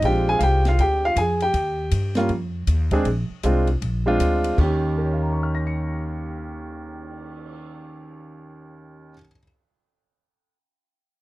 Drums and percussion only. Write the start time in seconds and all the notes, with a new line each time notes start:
0.02 kick, ride
0.40 kick, hi-hat pedal, ride
0.65 snare, ride
0.79 kick, ride
1.16 kick, hi-hat pedal, ride
1.40 ride
1.54 kick, ride
1.91 kick, hi-hat pedal, ride
2.15 snare, ride
2.29 kick, ride
2.67 kick, hi-hat pedal, ride
2.91 kick, ride
3.05 kick, ride
3.43 kick, hi-hat pedal, ride
3.67 ride
3.82 kick, ride
4.20 kick, hi-hat pedal, ride
4.44 ride
4.58 kick, crash
4.82 cymbal swell